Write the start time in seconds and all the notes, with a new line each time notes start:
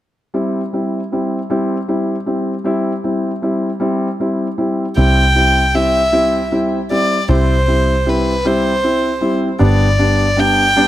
0.34 G3 C4 E4
0.73 G3 C4 E4
1.12 G3 C4 E4
1.50 G3 C4 E4
1.88 G3 C4 E4
2.26 G3 C4 E4
2.64 G3 C4 E4
3.04 G3 C4 E4
3.42 G3 C4 E4
3.80 G3 C4 E4
4.20 G3 C4 E4
4.58 G3 C4 E4
4.97 C2 G3 C4 E4 G5
5.35 G3 C4 E4
5.74 G3 C4 E4 E5
6.12 G3 C4 E4
6.52 G3 C4 E4
6.91 G3 C4 E4 D5
7.28 C2 G3 C4 E4 C5
7.67 G3 C4 E4
8.06 G3 C4 E4 B4
8.45 G3 C4 E4 C5
8.83 C4 E4
9.21 G3 C4 E4
9.59 G1 G3 B3 D4 D5
9.99 G3 B3 D4
10.36 G3 B3 D4 G5
10.76 G3 B3 D4